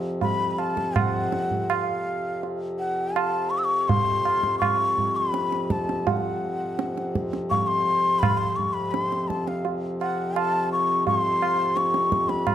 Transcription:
0.00 12.55 F2 medium
0.00 12.55 C3 medium
0.21 0.51 B5 medium
0.21 tabla tin medium
0.21 tabla ge medium
0.51 0.61 B5 medium
0.58 0.98 A5 medium
0.58 tabla na soft
0.77 tabla ke medium
0.96 1.72 F#5 medium
0.96 tabla na medium
0.96 tabla ge medium
1.32 tabla te medium
1.51 tabla ge soft
1.70 2.43 F5 medium
1.70 tabla na medium
2.43 tabla tin medium
2.79 3.17 F#5 medium
3.15 3.52 A5 medium
3.15 tabla na medium
3.50 3.60 C#6 medium
3.58 3.66 E6 medium
3.64 3.90 C#6 medium
3.88 4.58 C6 medium
3.88 tabla tin medium
3.88 tabla ge medium
4.25 tabla na medium
4.43 tabla ke soft
4.59 5.18 C#6 loud
4.59 tabla na medium
4.59 tabla ge medium
4.98 tabla ge soft
5.16 5.73 B5 medium
5.34 tabla te medium
5.52 tabla te medium
5.70 6.10 A5 medium
5.70 tabla ke medium
5.89 tabla te soft
6.07 7.16 F#5 medium
6.07 tabla tin medium
6.07 tabla ge medium
6.79 tabla te medium
6.98 tabla te medium
7.15 tabla ke medium
7.33 tabla te medium
7.50 7.69 C#6 medium
7.50 tabla tin medium
7.50 tabla ge medium
7.67 8.21 C6 medium
8.19 8.39 B5 medium
8.19 tabla na medium
8.19 tabla ge medium
8.38 8.57 C6 medium
8.56 8.75 C#6 medium
8.56 tabla ge soft
8.73 8.91 B5 medium
8.91 9.02 B5 medium
8.91 tabla te medium
9.02 9.30 C6 medium
9.12 tabla te medium
9.28 9.49 A5 medium
9.28 tabla ke medium
9.48 9.65 F5 medium
9.48 tabla te soft
9.65 tabla tin medium
10.01 10.39 F#5 medium
10.01 tabla na soft
10.36 10.72 A5 medium
10.36 tabla na medium
10.72 11.05 C#6 medium
11.07 11.78 C6 medium
11.07 tabla tin medium
11.07 tabla ge medium
11.42 tabla na medium
11.77 12.30 C#6 medium
11.77 tabla te medium
11.94 tabla te medium
12.12 tabla ke medium
12.29 12.55 B5 medium
12.29 tabla te soft
12.47 tabla na medium
12.47 tabla ge medium

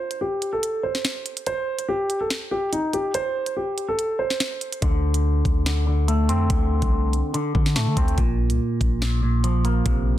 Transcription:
0.00 0.18 C5 medium
0.11 closed hi-hat medium
0.21 0.51 G4 medium
0.42 closed hi-hat medium
0.53 0.82 A4 medium
0.63 closed hi-hat medium
0.83 1.43 C5 medium
0.95 snare medium
1.05 snare loud
1.05 closed hi-hat medium
1.26 closed hi-hat medium
1.37 closed hi-hat medium
1.46 1.86 C5 loud
1.46 closed hi-hat medium
1.79 closed hi-hat medium
1.88 2.19 G4 medium
2.10 closed hi-hat medium
2.21 2.29 A4 medium
2.30 snare loud
2.30 closed hi-hat medium
2.51 2.69 G4 medium
2.72 2.90 D#4 medium
2.72 closed hi-hat medium
2.93 3.11 G4 medium
2.93 closed hi-hat medium
3.14 3.54 C5 loud
3.14 closed hi-hat medium
3.46 closed hi-hat medium
3.56 3.87 G4 medium
3.78 closed hi-hat medium
3.88 4.17 A4 medium
3.99 closed hi-hat medium
4.19 4.78 C5 medium
4.30 snare medium
4.40 snare loud
4.40 closed hi-hat medium
4.61 closed hi-hat medium
4.72 closed hi-hat medium
4.82 5.43 D2 loud
4.82 5.65 D3 medium
4.82 kick loud
4.82 closed hi-hat medium
5.14 closed hi-hat medium
5.45 6.30 D2 loud
5.45 kick medium
5.45 closed hi-hat medium
5.66 5.86 D3 medium
5.66 snare loud
5.66 closed hi-hat medium
5.87 6.49 D3 medium
6.08 7.13 A3 medium
6.08 closed hi-hat medium
6.29 6.49 F2 loud
6.29 7.34 C4 medium
6.29 closed hi-hat medium
6.50 6.81 D2 loud
6.50 7.33 D3 medium
6.50 kick loud
6.50 closed hi-hat medium
6.82 7.22 C2 loud
6.82 kick loud
6.82 closed hi-hat medium
7.13 closed hi-hat medium
7.34 7.54 D3 medium
7.34 closed hi-hat medium
7.55 8.18 D3 medium
7.55 7.77 D3 loud
7.55 kick medium
7.66 snare medium
7.76 7.88 A2 loud
7.76 8.18 A3 medium
7.76 snare loud
7.76 closed hi-hat medium
7.87 7.96 D3 loud
7.97 8.17 D2 loud
7.97 8.18 C4 medium
7.97 kick loud
7.97 closed hi-hat medium
8.08 closed hi-hat medium
8.18 8.51 A#1 loud
8.18 9.01 A#2 loud
8.18 kick loud
8.18 closed hi-hat medium
8.50 8.59 C2 medium
8.50 closed hi-hat medium
8.81 9.82 A#1 loud
8.81 kick medium
8.81 closed hi-hat medium
9.02 9.22 A#2 medium
9.02 snare loud
9.02 closed hi-hat medium
9.23 10.19 A#2 medium
9.44 10.19 F3 medium
9.44 closed hi-hat medium
9.65 10.19 A#3 medium
9.65 closed hi-hat medium
9.86 10.16 A#1 loud
9.86 10.19 C3 medium
9.86 kick loud
9.86 closed hi-hat medium

